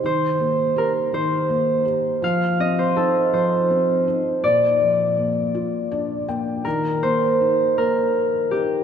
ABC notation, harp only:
X:1
M:6/8
L:1/16
Q:3/8=54
K:Eb
V:1 name="Harp"
c4 B2 c4 z2 | f2 e c =A2 c6 | d8- d2 z2 | B2 c4 B4 G2 |]